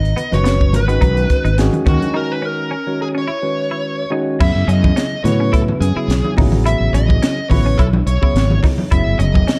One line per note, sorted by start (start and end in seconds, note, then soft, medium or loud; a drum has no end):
0.00 0.13 G#1 medium
0.00 0.13 D#4 medium
0.00 0.35 D#5 medium
0.05 closed hi-hat soft
0.16 0.40 B3 medium
0.16 closed hi-hat medium
0.16 low conga soft
0.31 0.74 F#1 medium
0.31 0.80 D#3 medium
0.31 0.81 G#3 medium
0.31 0.81 C#4 medium
0.31 0.81 F#4 soft
0.31 0.81 B4 medium
0.31 0.75 C#5 medium
0.31 closed hi-hat soft
0.31 high conga medium
0.44 0.68 B3 medium
0.44 snare loud
0.44 closed hi-hat medium
0.61 kick medium
0.73 0.97 G#1 medium
0.73 1.55 B4 medium
0.73 snare soft
0.73 closed hi-hat medium
0.73 high conga soft
0.73 low conga medium
0.88 1.50 D#3 medium
0.88 1.50 G#3 medium
0.88 0.99 B3 medium
0.88 1.50 C#4 medium
0.88 1.50 F#4 medium
0.88 1.50 B4 medium
0.88 closed hi-hat soft
1.01 1.25 B1 medium
1.01 1.25 D#4 medium
1.01 kick medium
1.01 closed hi-hat medium
1.01 high conga medium
1.17 closed hi-hat soft
1.30 kick medium
1.30 snare soft
1.30 closed hi-hat medium
1.45 1.68 G#1 medium
1.45 1.69 D#4 medium
1.45 closed hi-hat soft
1.58 1.85 D#3 medium
1.58 1.86 G#3 medium
1.58 1.85 C#4 medium
1.58 1.85 F#4 medium
1.58 1.87 G#4 medium
1.58 snare loud
1.58 closed hi-hat medium
1.73 closed hi-hat soft
1.73 high conga medium
1.86 1.99 D#2 medium
1.86 2.73 D#3 medium
1.86 2.73 G#3 medium
1.86 2.10 C#4 medium
1.86 2.73 C#4 medium
1.86 2.73 F#4 medium
1.86 2.16 F#4 medium
1.86 2.73 A#4 medium
1.86 kick loud
1.86 closed hi-hat medium
1.86 low conga medium
2.01 closed hi-hat soft
2.01 high conga medium
2.14 2.38 D#4 medium
2.14 2.32 A#4 medium
2.32 2.45 B4 medium
2.42 2.66 C#4 medium
2.42 3.01 A#4 medium
2.71 2.95 C#4 medium
2.87 3.27 D#3 medium
2.87 3.28 G#3 soft
2.87 3.28 C#4 medium
2.87 3.28 F#4 soft
2.87 3.28 C#5 medium
3.02 3.07 G#4 medium
3.15 3.25 C#4 medium
3.15 4.10 C#5 medium
3.28 3.51 E4 medium
3.42 4.04 D#3 medium
3.42 4.04 G#3 soft
3.42 4.04 C#4 medium
3.42 4.04 F#4 soft
3.42 4.04 B4 medium
3.71 3.95 E4 medium
4.10 4.39 D#3 medium
4.10 4.39 G#3 medium
4.10 4.39 C#4 medium
4.10 4.36 D#4 medium
4.10 4.39 F#4 medium
4.10 4.40 C#5 loud
4.39 4.53 F#2 medium
4.39 5.14 C#3 medium
4.39 5.15 F#3 medium
4.39 5.15 B3 medium
4.39 5.15 E4 medium
4.39 4.64 E4 medium
4.39 5.15 G#4 medium
4.39 4.68 E5 loud
4.39 kick loud
4.39 crash medium
4.55 4.66 F#2 medium
4.68 4.92 F#2 medium
4.68 4.92 C#4 medium
4.68 5.23 D#5 medium
4.68 closed hi-hat medium
4.84 kick medium
4.84 high conga medium
4.96 5.20 C#4 medium
4.96 snare loud
4.96 closed hi-hat medium
5.24 5.71 A2 medium
5.24 5.87 C#3 medium
5.24 5.87 F#3 medium
5.24 5.87 B3 medium
5.24 5.87 E4 medium
5.24 5.87 B4 medium
5.24 5.51 C#5 medium
5.24 snare soft
5.24 closed hi-hat medium
5.24 low conga medium
5.40 5.51 C#4 medium
5.53 5.77 E4 medium
5.53 5.60 A4 medium
5.53 kick medium
5.53 closed hi-hat medium
5.68 high conga medium
5.80 5.94 F#2 medium
5.80 6.33 G#4 medium
5.80 closed hi-hat medium
5.95 6.35 C#3 medium
5.95 6.36 F#3 medium
5.95 6.36 B3 medium
5.95 6.36 E4 medium
5.95 6.20 E4 medium
5.95 6.37 G#4 medium
5.95 muted fretless electric bass stroke soft
6.08 6.21 B1 medium
6.08 snare loud
6.08 closed hi-hat medium
6.24 high conga medium
6.36 6.74 A1 medium
6.36 7.37 C#3 medium
6.36 7.37 F#3 medium
6.36 7.37 B3 medium
6.36 6.61 D#4 medium
6.36 7.38 E4 medium
6.36 7.38 G#4 medium
6.36 kick medium
6.36 open hi-hat medium
6.36 low conga medium
6.52 high conga medium
6.66 6.89 E4 medium
6.66 6.92 E5 loud
6.66 closed hi-hat medium
6.80 6.92 A1 medium
6.93 7.17 A1 medium
6.93 7.18 C#4 medium
6.93 7.49 D#5 medium
6.93 closed hi-hat medium
7.08 kick medium
7.08 high conga medium
7.22 7.46 C#4 medium
7.22 snare medium
7.22 closed hi-hat medium
7.50 7.74 A1 medium
7.50 7.78 C#3 medium
7.50 7.79 F#3 medium
7.50 7.79 B3 medium
7.50 7.79 E4 medium
7.50 7.79 B4 medium
7.50 7.79 C#5 medium
7.50 kick medium
7.50 open hi-hat medium
7.50 low conga medium
7.66 7.77 C#4 medium
7.78 8.02 B1 loud
7.78 8.03 E4 medium
7.78 7.85 A4 medium
7.78 kick medium
7.78 closed hi-hat medium
7.93 high conga medium
8.06 8.19 B1 medium
8.06 8.59 C#5 medium
8.06 closed hi-hat medium
8.21 8.83 C#3 medium
8.21 8.83 F#3 medium
8.21 8.83 B3 medium
8.21 8.83 E4 medium
8.21 8.46 E4 medium
8.21 8.83 G#4 medium
8.21 muted fretless electric bass stroke soft
8.21 kick medium
8.34 8.58 G#1 medium
8.34 snare medium
8.34 closed hi-hat medium
8.50 high conga medium
8.63 8.87 D#4 medium
8.63 kick medium
8.63 snare soft
8.63 open hi-hat medium
8.63 low conga medium
8.78 high conga medium
8.91 9.05 F#1 medium
8.91 9.59 C#3 medium
8.91 9.59 F#3 medium
8.91 9.59 B3 medium
8.91 9.15 E4 medium
8.91 9.59 E4 soft
8.91 9.59 G#4 medium
8.91 9.19 E5 loud
8.91 kick loud
8.91 closed hi-hat medium
9.06 9.17 F#1 medium
9.19 9.43 F#1 medium
9.19 9.43 C#4 medium
9.19 9.59 D#5 medium
9.19 closed hi-hat medium
9.34 kick medium
9.34 high conga medium
9.47 9.59 C#4 medium
9.47 snare loud
9.47 closed hi-hat medium